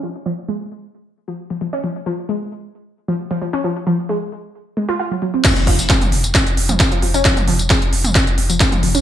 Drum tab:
CC |----------------|----------------|----------------|x---------------|
HH |----------------|----------------|----------------|xxoxxxoxxxoxxxox|
TB |----------------|----------------|----------------|xx-xxx-xxx-xxx-x|
SD |----------------|----------------|----------------|o---o---o---o---|
T2 |----------------|----------------|----------------|-----o-----o----|
BD |----------------|----------------|----------------|o-o-o---o---o---|

CC |----------------|
HH |xxoxxxoxxxoxxxox|
TB |xx-xxx-xxx-xxx-x|
SD |o---o---o---o---|
T2 |-o-----o-----o--|
BD |o---o---o---o---|